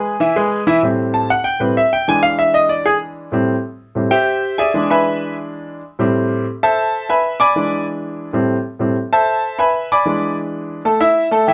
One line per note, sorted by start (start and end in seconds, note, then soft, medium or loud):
0.00 0.14 G#3 medium
0.00 0.15 G#4 medium
0.00 0.15 B4 medium
0.00 0.48 G#5 medium
0.20 0.33 E3 medium
0.20 0.33 E4 medium
0.20 0.33 E5 medium
0.36 0.62 G#3 medium
0.36 0.62 G#4 medium
0.36 0.62 B4 medium
0.67 0.80 E3 medium
0.67 0.80 E4 medium
0.67 0.80 E5 medium
0.83 1.27 A2 medium
0.83 1.28 G3 soft
0.83 1.28 C4 medium
1.14 1.29 A5 medium
1.30 1.45 F#5 medium
1.44 1.60 G5 medium
1.60 1.74 A2 soft
1.60 1.75 G3 soft
1.60 1.75 C4 medium
1.60 1.76 B4 medium
1.77 1.92 E5 medium
1.93 2.08 G5 medium
2.08 3.29 E3 medium
2.08 3.30 G#3 soft
2.08 3.30 D4 medium
2.08 2.24 G#5 medium
2.23 2.38 F5 loud
2.39 2.54 E5 medium
2.54 2.70 D#5 medium
2.69 2.85 D5 medium
2.86 2.95 G#4 medium
3.32 3.53 A2 medium
3.32 3.54 G3 medium
3.32 3.54 C4 medium
3.95 4.10 A2 soft
3.95 4.10 G3 soft
3.95 4.10 C4 soft
4.11 4.55 G4 medium
4.11 4.55 C5 medium
4.11 4.55 E5 medium
4.11 4.55 G5 loud
4.58 4.88 G#4 medium
4.58 4.88 D5 medium
4.58 4.88 E5 medium
4.58 4.88 G#5 medium
4.74 5.80 E3 medium
4.74 5.80 G#3 medium
4.74 5.81 D4 medium
4.90 5.34 B4 medium
4.90 5.34 E5 medium
4.90 5.34 G#5 medium
4.90 5.34 B5 medium
5.99 6.44 A2 medium
5.99 6.44 G3 medium
5.99 6.45 C4 medium
6.63 7.07 A4 medium
6.63 7.06 C5 medium
6.63 7.06 E5 medium
6.63 7.06 A5 loud
7.09 7.39 B4 medium
7.09 7.38 E5 medium
7.09 7.38 G#5 medium
7.09 7.39 B5 medium
7.40 7.84 D5 medium
7.40 7.84 G#5 medium
7.40 7.84 B5 medium
7.40 7.84 D6 loud
7.56 8.30 E3 medium
7.56 8.30 G#3 soft
7.56 8.31 D4 medium
8.33 8.54 A2 medium
8.33 8.55 G3 soft
8.33 8.55 C4 medium
8.79 8.94 A2 medium
8.79 8.95 G3 soft
8.79 8.95 C4 medium
9.13 9.56 A4 medium
9.13 9.56 C5 medium
9.13 9.56 E5 medium
9.13 9.56 A5 medium
9.59 9.89 B4 medium
9.59 9.88 E5 medium
9.59 9.89 G#5 medium
9.59 9.88 B5 medium
9.92 10.35 D5 medium
9.92 10.35 G#5 medium
9.92 10.35 B5 medium
9.92 10.35 D6 medium
10.05 10.80 E3 medium
10.05 10.81 G#3 medium
10.05 10.81 D4 medium
10.85 10.98 A3 medium
10.85 10.98 A4 medium
10.85 10.98 A5 medium
11.00 11.26 E4 medium
11.00 11.26 E5 medium
11.00 11.49 E5 medium
11.00 11.26 E6 medium
11.31 11.44 A3 medium
11.31 11.45 A4 medium
11.31 11.45 A5 medium
11.47 11.54 E3 medium
11.47 11.54 E4 medium
11.47 11.54 E5 medium
11.47 11.54 G5 loud